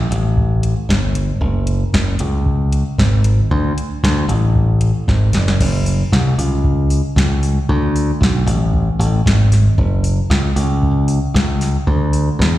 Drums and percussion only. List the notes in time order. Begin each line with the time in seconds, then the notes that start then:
0.12 closed hi-hat
0.37 kick
0.63 closed hi-hat
0.90 kick, snare
1.15 closed hi-hat
1.41 kick
1.67 closed hi-hat
1.94 kick, snare
2.19 closed hi-hat
2.46 kick
2.73 closed hi-hat
2.99 kick, snare
3.24 closed hi-hat
3.51 kick
3.78 closed hi-hat
4.04 kick, snare
4.29 closed hi-hat
4.56 kick
4.81 closed hi-hat
5.08 kick, snare
5.33 snare, closed hi-hat
5.48 snare
5.60 kick, crash
5.86 open hi-hat
6.12 kick, snare
6.39 open hi-hat
6.64 kick
6.90 open hi-hat
7.17 kick, snare
7.43 open hi-hat
7.69 kick
7.96 open hi-hat
8.21 kick, snare
8.48 open hi-hat
8.74 kick
9.01 open hi-hat
9.26 kick, snare
9.52 snare, open hi-hat
9.78 kick
10.04 open hi-hat
10.30 kick, snare
10.56 open hi-hat
10.83 kick
11.08 open hi-hat
11.35 kick, snare
11.61 snare, open hi-hat
11.87 kick
12.13 open hi-hat
12.40 kick, snare